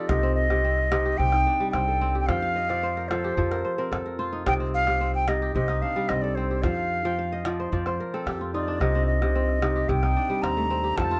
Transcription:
0.00 0.14 F3 medium
0.00 0.23 C4 medium
0.00 1.34 F4 medium
0.00 1.05 G4 medium
0.00 1.14 A4 medium
0.08 1.15 C2 medium
0.08 0.49 C3 medium
0.08 0.91 D#4 medium
0.08 0.34 D#5 medium
0.08 calabash thump medium
0.08 calabash click medium
0.23 0.64 C4 medium
0.35 1.19 D#5 loud
0.50 0.90 C3 medium
0.50 calabash click soft
0.64 1.74 C4 medium
0.78 calabash click soft
0.91 1.18 C3 medium
0.91 1.33 D#4 medium
0.91 calabash click medium
1.05 2.15 G4 medium
1.18 1.44 C2 medium
1.18 2.33 C3 medium
1.18 1.71 G5 loud
1.18 calabash thump medium
1.32 2.76 D#4 medium
1.32 calabash click soft
1.47 2.62 D4 medium
1.60 2.33 G3 medium
1.71 2.24 C2 medium
1.71 2.01 C4 medium
1.71 2.16 G5 medium
1.71 calabash click medium
1.88 3.03 A4 medium
2.01 3.78 C4 medium
2.15 3.24 G4 medium
2.20 2.28 G5 medium
2.27 3.33 F2 medium
2.27 2.69 F3 medium
2.27 3.10 F5 loud
2.27 3.22 G5 medium
2.27 calabash thump medium
2.27 calabash click medium
2.42 3.42 F5 medium
2.56 3.63 D#5 medium
2.69 3.09 F3 medium
2.69 3.81 D5 medium
2.69 calabash click soft
2.83 3.64 C5 medium
2.97 3.44 A#4 medium
2.97 calabash click soft
3.08 3.37 F3 medium
3.08 3.37 A4 medium
3.08 3.91 C5 medium
3.08 calabash click medium
3.24 4.65 G4 medium
3.37 3.62 F2 medium
3.37 4.51 F3 medium
3.37 3.84 A4 medium
3.37 calabash thump medium
3.51 3.78 A#4 medium
3.51 calabash click soft
3.65 4.18 C5 medium
3.78 4.60 C4 medium
3.78 4.05 A#4 medium
3.92 4.42 F2 medium
3.92 5.23 A4 medium
3.92 calabash click medium
4.06 5.33 A#4 medium
4.19 5.70 F4 medium
4.19 5.38 C5 medium
4.33 4.46 D#4 medium
4.46 5.51 C2 medium
4.46 4.86 C3 medium
4.46 5.28 D#4 medium
4.46 4.54 G5 loud
4.46 calabash thump medium
4.46 calabash click medium
4.60 5.01 C4 medium
4.74 5.12 F5 loud
4.87 5.27 C3 medium
4.87 calabash click soft
5.01 6.09 C4 medium
5.14 5.30 G5 medium
5.14 calabash click soft
5.28 5.54 C3 medium
5.28 5.69 D#4 medium
5.28 5.55 D#5 medium
5.28 calabash click medium
5.42 6.50 G4 medium
5.55 5.81 C2 medium
5.55 6.69 C3 medium
5.55 5.83 D#5 medium
5.55 calabash thump medium
5.68 7.31 D#4 medium
5.68 calabash click soft
5.82 7.38 D4 medium
5.82 6.10 F5 medium
5.96 6.69 G3 medium
6.09 6.60 C2 medium
6.09 6.37 C4 medium
6.09 6.23 D#5 medium
6.09 calabash click medium
6.22 7.55 A4 medium
6.22 6.37 D5 medium
6.35 8.13 C4 medium
6.35 6.64 C5 medium
6.51 7.92 G4 medium
6.63 7.69 F2 medium
6.63 7.04 F3 medium
6.63 7.45 F5 medium
6.63 calabash thump medium
6.63 calabash click medium
6.77 calabash click soft
7.05 7.45 F3 medium
7.05 7.98 G5 medium
7.19 8.18 F5 medium
7.32 7.79 D#5 medium
7.45 7.72 F3 medium
7.45 7.72 D5 medium
7.45 calabash click medium
7.60 7.86 C5 medium
7.72 7.97 F2 medium
7.72 8.86 F3 medium
7.72 8.60 D5 medium
7.72 calabash thump medium
7.86 9.05 C5 medium
7.86 calabash click soft
8.00 9.28 A#4 medium
8.14 8.95 C4 medium
8.14 9.46 A4 medium
8.26 8.77 F2 medium
8.26 9.69 G4 medium
8.26 calabash click medium
8.41 8.54 F4 medium
8.54 8.81 D#4 medium
8.54 10.06 F4 medium
8.54 8.82 D5 medium
8.68 9.68 D4 medium
8.80 9.85 C2 medium
8.80 9.21 C3 medium
8.80 9.62 D#4 medium
8.80 9.06 D#5 medium
8.80 calabash thump medium
8.80 calabash click soft
8.95 9.35 C4 medium
9.07 9.90 D#5 medium
9.22 9.61 C3 medium
9.22 calabash click soft
9.35 10.43 C4 medium
9.49 calabash click soft
9.62 9.88 C3 medium
9.62 10.03 D#4 medium
9.62 calabash click medium
9.76 10.83 G4 medium
9.89 10.14 C2 loud
9.89 11.02 C3 medium
9.89 10.44 G5 medium
9.89 calabash thump medium
10.03 11.20 D#4 medium
10.03 calabash click soft
10.16 11.20 D4 medium
10.30 11.02 G3 medium
10.42 10.93 D#2 medium
10.42 10.70 C4 medium
10.42 10.98 A#5 medium
10.42 calabash click medium
10.57 11.20 A3 medium
10.70 11.20 C4 medium
10.84 11.20 G4 medium
10.96 11.20 F2 medium
10.96 11.20 F3 medium
10.96 11.20 A4 medium
10.96 11.20 A5 loud
10.96 calabash thump medium
10.96 calabash click medium
11.11 11.20 F4 medium

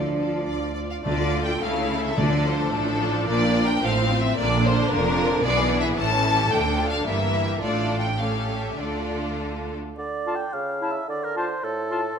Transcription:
0.00 0.40 D2 soft
0.00 0.73 D3 medium
0.00 0.76 F3 medium
0.00 0.75 D4 medium
0.00 0.15 F4 soft
0.00 0.14 A4 soft
0.00 0.16 D5 soft
0.15 0.75 F4 soft
0.15 0.39 A4 soft
0.15 0.75 D5 soft
0.45 0.99 D2 soft
0.45 0.73 D5 soft
0.75 1.04 F4 soft
0.75 0.81 D5 soft
0.75 1.04 D5 soft
0.90 0.96 F5 soft
1.04 1.52 D2 medium
1.04 1.52 D3 medium
1.04 1.58 D3 medium
1.04 1.18 A3 medium
1.04 2.13 A3 medium
1.04 1.57 F4 medium
1.04 1.57 D5 medium
1.04 1.40 D5 medium
1.18 1.33 D4 soft
1.32 1.47 F4 medium
1.44 1.60 A4 medium
1.44 1.62 G5 medium
1.61 2.08 C#2 medium
1.61 2.08 C#3 medium
1.61 1.75 A3 medium
1.61 2.17 E4 medium
1.61 3.28 A4 medium
1.61 1.99 F5 medium
1.76 1.90 C#4 medium
1.89 2.03 E4 medium
2.00 2.17 C#4 medium
2.00 2.18 E5 medium
2.16 2.63 D2 medium
2.16 2.63 D3 medium
2.16 2.96 D3 medium
2.16 4.37 F3 medium
2.16 2.30 A3 medium
2.16 3.83 D4 medium
2.16 2.45 D5 medium
2.30 2.44 D4 medium
2.44 2.58 F4 medium
2.44 2.73 C5 medium
2.59 2.73 D4 medium
2.72 3.18 A1 medium
2.72 3.18 A2 medium
2.72 2.87 A3 medium
2.72 3.27 A4 medium
2.87 3.00 D4 medium
3.01 3.14 F4 medium
3.14 3.28 D4 medium
3.28 3.74 A#1 medium
3.28 3.74 A#2 medium
3.28 3.41 A#3 medium
3.28 3.83 A#4 medium
3.28 3.64 D5 loud
3.42 3.55 D4 medium
3.55 3.69 F4 medium
3.66 3.83 D4 medium
3.66 3.84 G5 loud
3.83 4.28 A1 medium
3.83 4.28 A2 medium
3.83 3.96 A3 medium
3.83 4.37 C4 medium
3.83 4.38 C5 medium
3.83 4.20 F5 medium
3.98 4.11 C4 medium
4.12 4.24 F4 medium
4.20 4.37 C4 medium
4.20 4.38 E5 loud
4.37 4.82 A#1 medium
4.37 4.82 A#2 medium
4.37 5.42 D3 medium
4.37 4.50 A#3 medium
4.37 5.42 D4 medium
4.37 5.42 A#4 medium
4.37 4.64 D5 loud
4.52 4.65 D4 medium
4.65 4.78 F4 medium
4.65 4.91 C5 loud
4.79 4.91 D4 medium
4.91 5.35 F1 medium
4.91 5.35 F2 medium
4.91 5.05 A#3 medium
4.91 5.44 A#4 loud
5.05 5.18 D4 medium
5.18 5.31 F4 medium
5.31 5.44 D4 medium
5.43 5.89 B1 medium
5.43 5.88 B2 medium
5.43 6.52 E3 medium
5.43 5.56 G#3 medium
5.43 5.98 B3 medium
5.43 5.98 G#4 medium
5.43 5.79 D5 loud
5.58 5.71 B3 medium
5.71 5.84 D4 medium
5.80 5.98 E4 medium
5.80 5.87 E5 medium
5.97 6.43 A1 medium
5.97 6.43 A2 medium
5.97 6.11 A3 medium
5.97 6.52 C#4 medium
5.97 7.07 A4 medium
5.97 6.51 A5 loud
6.11 6.25 C#4 medium
6.26 6.39 E4 medium
6.39 6.52 G4 medium
6.51 6.97 D2 medium
6.51 7.07 D3 medium
6.51 6.64 A3 medium
6.51 7.06 D4 medium
6.51 6.88 G5 loud
6.64 6.78 D4 medium
6.78 6.92 F4 medium
6.90 7.06 D4 medium
6.90 7.07 F5 medium
7.05 7.52 G1 medium
7.05 7.52 G2 medium
7.05 7.61 E3 medium
7.05 7.19 G3 medium
7.05 7.61 A#3 medium
7.05 7.62 A#4 medium
7.05 7.60 E5 medium
7.21 7.34 A#3 medium
7.35 7.48 E4 medium
7.47 7.61 G4 soft
7.61 8.74 A1 medium
7.61 8.74 A2 medium
7.61 8.15 A3 medium
7.61 8.15 D4 medium
7.61 8.14 F4 medium
7.61 8.14 A4 medium
7.61 7.99 D5 medium
7.99 8.18 G5 medium
8.18 8.77 A3 soft
8.18 8.77 C#4 medium
8.18 8.77 G4 soft
8.18 8.77 A4 medium
8.18 8.58 F5 medium
8.58 8.78 E5 medium
8.78 9.75 D2 soft
8.78 9.76 D3 soft
8.78 9.76 A3 soft
8.78 9.77 D4 soft
8.78 9.77 F4 soft
8.78 9.76 A4 soft
8.78 9.39 D5 medium
9.98 10.44 D3 soft
9.98 10.37 D5 medium
10.26 10.36 F4 soft
10.26 10.39 A5 soft
10.35 10.54 G5 medium
10.53 11.00 C#3 soft
10.53 10.93 F5 medium
10.81 10.91 E4 soft
10.81 10.94 A5 soft
10.91 11.09 E5 medium
11.08 11.54 D3 medium
11.08 11.25 D5 medium
11.24 11.37 A#4 medium
11.36 11.46 F4 soft
11.36 11.66 C5 medium
11.36 11.49 A5 soft
11.63 12.09 A2 medium
11.63 12.17 A4 medium
11.90 12.00 F4 medium
11.90 12.03 A5 medium

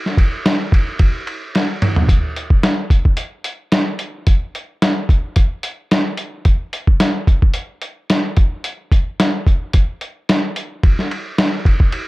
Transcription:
0.06 snare soft
0.17 kick medium
0.17 ride medium
0.46 snare loud
0.46 ride medium
0.72 kick medium
0.72 ride medium
0.99 kick loud
0.99 ride medium
1.27 ride medium
1.55 snare medium
1.55 ride medium
1.82 mid tom loud
1.82 ride medium
1.96 floor tom loud
2.09 kick loud
2.09 closed hi-hat medium
2.36 closed hi-hat medium
2.50 kick medium
2.63 snare loud
2.63 closed hi-hat medium
2.90 kick medium
2.90 closed hi-hat medium
3.05 kick medium
3.17 closed hi-hat medium
3.44 closed hi-hat medium
3.72 snare loud
3.72 closed hi-hat medium
3.99 closed hi-hat medium
4.27 kick loud
4.27 closed hi-hat medium
4.55 closed hi-hat medium
4.82 snare loud
4.82 closed hi-hat medium
5.09 kick medium
5.09 closed hi-hat medium
5.36 kick medium
5.36 closed hi-hat medium
5.63 closed hi-hat medium
5.91 snare medium
5.91 closed hi-hat medium
6.17 closed hi-hat medium
6.45 kick loud
6.45 closed hi-hat medium
6.73 closed hi-hat medium
6.87 kick medium
7.00 snare loud
7.00 closed hi-hat medium
7.27 kick medium
7.27 closed hi-hat medium
7.42 kick medium
7.54 closed hi-hat loud
7.82 closed hi-hat medium
8.10 snare loud
8.10 closed hi-hat medium
8.37 kick medium
8.37 closed hi-hat medium
8.64 closed hi-hat medium
8.92 kick medium
8.92 closed hi-hat medium
9.20 snare loud
9.20 closed hi-hat medium
9.47 kick medium
9.47 closed hi-hat medium
9.73 kick medium
9.73 closed hi-hat loud
10.01 closed hi-hat medium
10.29 snare medium
10.29 closed hi-hat medium
10.56 closed hi-hat medium
10.83 kick loud
10.83 ride medium
10.99 snare soft
11.11 ride medium
11.38 snare loud
11.38 ride medium
11.65 kick loud
11.65 ride medium
11.80 kick medium
11.92 ride medium

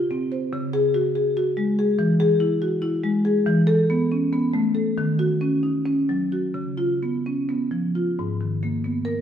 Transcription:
0.00 0.49 C#3 medium
0.00 0.23 F4 medium
0.11 0.45 C4 medium
0.32 0.53 C5 medium
0.53 1.95 C#3 medium
0.73 1.08 G#4 loud
0.94 1.28 F#4 medium
1.15 1.37 G#4 medium
1.37 1.70 F#4 medium
1.57 1.90 G#3 medium
1.79 1.99 G#4 medium
1.99 3.41 E3 loud
2.20 2.53 G#4 loud
2.40 2.73 E4 medium
2.62 2.82 F#4 medium
2.82 3.16 E4 medium
3.04 3.37 G#3 medium
3.25 3.46 G#4 medium
3.47 4.94 E3 loud
3.67 4.02 A4 loud
3.90 4.24 B3 medium
4.12 4.33 C#4 medium
4.33 4.67 B3 medium
4.53 4.88 A3 medium
4.75 4.97 A4 medium
4.98 6.51 D#3 loud
5.19 5.54 F#4 medium
5.41 5.76 C#4 medium
5.63 5.85 D#4 medium
5.86 6.22 C#4 medium
6.09 6.46 F#3 medium
6.32 6.55 F#4 medium
6.54 8.15 C#3 medium
6.77 7.16 F4 medium
7.03 7.40 B3 medium
7.26 7.50 C#4 medium
7.49 7.87 B3 medium
7.71 8.10 F3 medium
7.95 8.19 F4 medium
8.19 9.21 G#2 medium
8.41 8.76 D#3 medium
8.63 8.97 A#3 medium
8.84 9.18 B3 medium
9.05 9.21 A#4 medium

